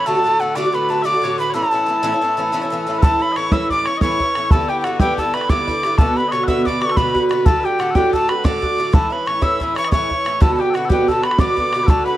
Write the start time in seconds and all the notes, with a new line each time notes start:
0.05 A2 D3 A3 F#4 A4 A5
0.15 D3 A3 F#4
0.24 A2 D3 A3 F#4
0.39 A2 D3 A3 F#4 F#5
0.55 A2 D3 A3 F#4 D5 D6
0.64 D3 A3 F#4
0.72 A2 D3 A3 F#4 B4 B5
0.89 A2 D3 A3 F#4 A5
1.02 A2 D3 A3 F#4 D5 E5 D6
1.13 D3 A3 F#4
1.22 A2 D3 A3 F#4 C#5
1.38 A2 D3 A3 F#4 B4 B5
1.50 A2 C#5
1.54 E3 C#4 E4 A4 A5
1.62 E3 C#4 E4
1.71 A2 E3 C#4 E4
1.86 A2 E3 C#4 E4
2.03 A2 E3 C#4 E4
2.12 E3 C#4 E4
2.22 A2 E3 C#4 E4
2.37 A2 E3 C#4 E4
2.52 A2 E3 C#4 E4
2.61 E3 C#4 E4
2.70 A2 E3 C#4 E4
2.87 A2 E3 C#4 E4
2.98 A2 A4 B4
3.03 E3 C#4 E4 A5, bodhran
3.19 E3 C#4 E4 B5
3.32 D#5
3.36 A2 E3 C#4 E4 C#5 C#6, bodhran
3.52 A2 E3 C#4 E4 E5 E6, bodhran
3.70 A2 E3 C#4 E4 D5 D6, bodhran
3.86 E3 C#4 E4 C#5 C#6, bodhran
3.97 D#5, bodhran
4.02 A2 E3 C#4 E4 C#5 C#6
4.20 E3 C#4 E4, bodhran
4.35 A2 E3 C#4 E4, bodhran
4.50 G2 D3 B3 E4 A4 A5, bodhran
4.68 D3 B3 E4 G4 G5
4.81 G2 F#4 F#5 G5, bodhran
4.85 D3 B3 E4
5.00 G2 D3 B3 E4 G4 G5, bodhran
5.18 G2 D3 B3 E4 A4 A5, bodhran
5.34 D3 B3 E4 B4 B5, bodhran
5.41 bodhran
5.49 G2 D3 B3 E4 D5 D6, bodhran
5.67 D3 B3 E4, bodhran
5.83 G2 D3 B3 E4, bodhran
5.98 B2 D3 B3 F#4 A4 A5, bodhran
6.16 D3 B3 F#4 B4 B5
6.28 B2 C#5 D#5 C#6
6.32 D3 B3 F#4, bodhran
6.44 F#5 E6
6.48 B2 D3 B3 F#4 E5, bodhran
6.65 B2 D3 B3 F#4 D5 D6, bodhran
6.81 D3 B3 F#4 C#6, bodhran
6.90 A4, bodhran
6.97 B2 D3 B3 F#4 B4 B5, bodhran
7.15 D3 B3 F#4, bodhran
7.29 B2 D3 B3 F#4, bodhran
7.46 A2 D3 A3 F#4 A4 A5, bodhran
7.60 F#4 G4 B4
7.65 D3 A3 G5
7.79 A2 D3 A3 F#4 F#5, bodhran
7.91 A4
7.95 A2 D3 A3 F#4 G4 G5, bodhran
8.13 A2 D3 A3 F#4 A4 A5, bodhran
8.28 D3 A3 F#4 B4 B5, bodhran
8.44 A2 D3 A3 F#4 D5 D6, bodhran
8.62 D3 A3 F#4, bodhran
8.77 A2 D3 A3 F#4
8.93 A2 E3 C#4 E4 A4 A5, bodhran
9.10 E3 C#4 E4 B4 B5
9.26 A2 E3 C#4 E4 C#5 C#6, bodhran
9.41 A2 E3 C#4 E4 E5 E6, bodhran
9.60 A2 E3 C#4 E4, bodhran
9.75 E3 C#4 E4 C#5 C#6, bodhran
9.84 D#5, bodhran
9.92 A2 E3 C#4 E4 C#5 C#6, bodhran
10.10 E3 C#4 E4, bodhran
10.25 A2 E3 C#4 E4, bodhran
10.41 B2 D3 B3 F#4 A4 A5, bodhran
10.55 F#4 A5
10.59 D3 B3 G4 G5
10.70 B2 F#4 A4
10.75 D3 B3 F#4 F#5, bodhran
10.85 G4 A4
10.90 B2 D3 B3 F#4 G5, bodhran
11.08 B2 D3 B3 F#4 A4 A5, bodhran
11.22 B3 F#4 B4 B5, bodhran
11.26 D3
11.31 bodhran
11.38 B2 D3 B3 F#4 D5 D6, bodhran
11.57 D3 B3 F#4, bodhran
11.72 B2 D3 B3 F#4, bodhran
11.83 A4 B4
11.88 A2 D3 A3 F#4 A5, bodhran
12.05 A3 F#4 B4 B5
12.09 D3